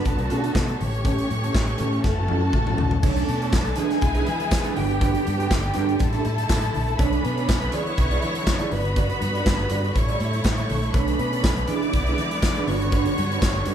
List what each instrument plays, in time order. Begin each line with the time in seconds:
Already playing: string section D3 B3
0.04 fingered electric bass B1, string section A3 F#4, violin section A4 A5, muted clean electric guitar stroke, kick, closed hi-hat, muted conga
0.18 fingered electric bass B1, muted clean electric guitar stroke, closed hi-hat, muted conga
0.30 fingered electric bass B2, clean electric guitar D4 F#4 A4, closed hi-hat
0.43 clean electric guitar D4 F#4 A4, closed hi-hat
0.55 fingered electric bass B2, muted clean electric guitar stroke, kick, snare, clap
0.68 muted clean electric guitar stroke, closed hi-hat, muted conga, high conga
0.79 fingered electric bass A1, string section E3 A3 C#4 G4, violin section C#5 C#6, open hi-hat, high conga, low conga
0.93 muted clean electric guitar stroke, closed hi-hat
1.04 clean electric guitar C#4 G4 A4, kick, closed hi-hat, muted conga, low conga
1.18 muted clean electric guitar stroke, closed hi-hat, muted conga
1.29 fingered electric bass A2, closed hi-hat, high conga
1.44 clean electric guitar C#4 G4 A4, closed hi-hat
1.55 fingered electric bass A1, muted clean electric guitar stroke, kick, snare, clap
1.67 muted clean electric guitar stroke, closed hi-hat, muted conga
1.78 fingered electric bass A2, clean electric guitar C#4 G4 A4, closed hi-hat, low conga
1.92 muted clean electric guitar stroke, closed hi-hat
2.04 fingered electric bass F#1, string section F#4, violin section A4 A5, muted clean electric guitar stroke, kick, snare, muted conga
2.18 fingered electric bass F#1, muted clean electric guitar stroke
2.28 fingered electric bass F#2, clean electric guitar C#4 E4 A4, high tom
2.44 muted clean electric guitar stroke
2.53 fingered electric bass A1, muted clean electric guitar stroke, kick, mid tom
2.67 clean electric guitar C#4 E4 A4, mid tom, muted conga, high conga
2.78 fingered electric bass A#1, clean electric guitar C#4 E4 A4, floor tom, high conga, low conga
2.91 muted clean electric guitar stroke, floor tom
3.02 fingered electric bass B1, string section A3 B3 C#4 D4, clean electric guitar D4 A4 C#5, violin section A4 A5, kick, crash, muted conga, low conga
3.16 muted clean electric guitar stroke, closed hi-hat
3.27 fingered electric bass B2, muted clean electric guitar stroke, closed hi-hat, high conga
3.40 clean electric guitar D4 A4 C#5, closed hi-hat
3.52 fingered electric bass B1, muted clean electric guitar stroke, kick, snare, clap, tambourine
3.65 muted clean electric guitar stroke, closed hi-hat
3.76 string section D3 G#3 E4, fingered electric bass E3, clean electric guitar D4 G#4 B4, violin section G#4 G#5, closed hi-hat
3.90 muted clean electric guitar stroke, snare, closed hi-hat
4.01 fingered electric bass B1, muted clean electric guitar stroke, kick, closed hi-hat, muted conga
4.15 clean electric guitar D4 G#4 B4, closed hi-hat
4.26 fingered electric bass E3, muted clean electric guitar stroke, closed hi-hat
4.40 muted clean electric guitar stroke, closed hi-hat, high conga
4.51 fingered electric bass E3, muted clean electric guitar stroke, kick, snare, clap, tambourine
4.64 clean electric guitar D4 G#4 B4, closed hi-hat, high conga
4.76 fingered electric bass G1, string section G3 G4, clean electric guitar D4 F#4 B4, violin section G4 G5, open hi-hat, high conga, low conga
4.89 muted clean electric guitar stroke, closed hi-hat
5.00 clean electric guitar D4 F#4 B4, kick, closed hi-hat, muted conga, low conga
5.13 muted clean electric guitar stroke, closed hi-hat, muted conga
5.25 fingered electric bass G2, muted clean electric guitar stroke, closed hi-hat, high conga
5.37 clean electric guitar D4 F#4 B4, closed hi-hat
5.50 fingered electric bass G1, muted clean electric guitar stroke, kick, snare, clap, tambourine
5.62 muted clean electric guitar stroke, closed hi-hat
5.74 fingered electric bass G2, clean electric guitar D4 F#4 B4, closed hi-hat
5.87 muted clean electric guitar stroke, closed hi-hat
5.99 fingered electric bass A1, string section A3 E4, violin section A4 A5, muted clean electric guitar stroke, kick, closed hi-hat
6.12 clean electric guitar D4 G4 A4, closed hi-hat
6.25 fingered electric bass A2, muted clean electric guitar stroke, closed hi-hat
6.38 muted clean electric guitar stroke, closed hi-hat, high conga
6.49 fingered electric bass A2, muted clean electric guitar stroke, kick, snare, clap, tambourine
6.62 muted clean electric guitar stroke, closed hi-hat, high conga
6.74 fingered electric bass A#1, open hi-hat, high conga, low conga
6.87 muted clean electric guitar stroke, closed hi-hat
6.98 fingered electric bass B1, string section B3 C#4 D4, clean electric guitar D4 A4 C#5, violin section B4 B5, kick, closed hi-hat, low conga
7.12 muted clean electric guitar stroke, closed hi-hat, muted conga
7.23 fingered electric bass B2, muted clean electric guitar stroke, closed hi-hat, high conga
7.36 clean electric guitar D4 A4 C#5, closed hi-hat
7.48 fingered electric bass B1, muted clean electric guitar stroke, kick, snare, clap, tambourine
7.60 muted clean electric guitar stroke, closed hi-hat, muted conga
7.72 string section D3 G#3 E4, fingered electric bass E3, clean electric guitar E4 G#4 D5, violin section C#5 C#6, closed hi-hat
7.85 muted clean electric guitar stroke, closed hi-hat
7.96 fingered electric bass B1, muted clean electric guitar stroke, kick, closed hi-hat
8.11 clean electric guitar E4 G#4 D5, closed hi-hat, muted conga
8.22 fingered electric bass E3, muted clean electric guitar stroke, closed hi-hat
8.35 muted clean electric guitar stroke, closed hi-hat, high conga
8.47 fingered electric bass E3, muted clean electric guitar stroke, kick, snare, clap, tambourine
8.59 clean electric guitar E4 G#4 D5, closed hi-hat, muted conga, high conga
8.71 fingered electric bass G1, string section D3 G3 B3 F#4, clean electric guitar F#4 B4 D5, violin section B4 B5, open hi-hat, high conga, low conga
8.85 muted clean electric guitar stroke, closed hi-hat
8.96 clean electric guitar F#4 B4 D5, kick, closed hi-hat, low conga
9.10 muted clean electric guitar stroke, closed hi-hat, muted conga
9.20 fingered electric bass G2, muted clean electric guitar stroke, closed hi-hat, high conga
9.34 clean electric guitar F#4 B4 D5, closed hi-hat
9.46 fingered electric bass G1, muted clean electric guitar stroke, kick, snare, clap, tambourine, muted conga
9.59 muted clean electric guitar stroke, closed hi-hat
9.69 fingered electric bass G2, clean electric guitar F#4 B4 D5, closed hi-hat, low conga
9.84 muted clean electric guitar stroke, closed hi-hat
9.94 fingered electric bass A1, string section A3 E4, violin section C#5 C#6, muted clean electric guitar stroke, kick, closed hi-hat, muted conga
10.08 clean electric guitar G4 A4 D5, closed hi-hat, muted conga
10.20 fingered electric bass A2, muted clean electric guitar stroke, closed hi-hat
10.32 muted clean electric guitar stroke, closed hi-hat, high conga
10.44 fingered electric bass A2, muted clean electric guitar stroke, kick, snare, clap, tambourine
10.57 muted clean electric guitar stroke, closed hi-hat, muted conga, high conga
10.69 fingered electric bass A#1, open hi-hat, high conga, low conga
10.82 muted clean electric guitar stroke, closed hi-hat
10.94 fingered electric bass B1, string section B3 C#4 D4, clean electric guitar D4 A4 C#5, violin section B4 B5, kick, closed hi-hat, muted conga, low conga
11.07 muted clean electric guitar stroke, closed hi-hat
11.18 fingered electric bass B2, muted clean electric guitar stroke, closed hi-hat, high conga
11.31 clean electric guitar D4 A4 C#5, closed hi-hat
11.44 fingered electric bass B1, muted clean electric guitar stroke, kick, snare, clap, tambourine
11.57 muted clean electric guitar stroke, closed hi-hat
11.68 string section D3 G#3 E4, fingered electric bass E3, clean electric guitar D4 G#4 B4, violin section D5 D6, closed hi-hat
11.81 muted clean electric guitar stroke, closed hi-hat
11.93 fingered electric bass B1, muted clean electric guitar stroke, kick, closed hi-hat, muted conga
12.06 clean electric guitar D4 G#4 B4, closed hi-hat, muted conga
12.18 fingered electric bass E3, muted clean electric guitar stroke, closed hi-hat
12.30 muted clean electric guitar stroke, closed hi-hat, high conga
12.42 fingered electric bass E3, muted clean electric guitar stroke, kick, snare, clap, tambourine
12.55 clean electric guitar D4 G#4 B4, closed hi-hat, muted conga, high conga
12.67 fingered electric bass G1, string section G3 F#4, clean electric guitar D4 F#4 B4, violin section C#5 C#6, open hi-hat, high conga, low conga
12.80 muted clean electric guitar stroke, closed hi-hat
12.91 clean electric guitar D4 F#4 B4, kick, closed hi-hat, muted conga, low conga
13.05 muted clean electric guitar stroke, closed hi-hat, muted conga
13.16 fingered electric bass G2, muted clean electric guitar stroke, closed hi-hat, high conga
13.30 clean electric guitar D4 F#4 B4, closed hi-hat
13.42 fingered electric bass G1, muted clean electric guitar stroke, kick, snare, clap, tambourine
13.55 muted clean electric guitar stroke, closed hi-hat
13.65 fingered electric bass G2, clean electric guitar D4 F#4 B4, closed hi-hat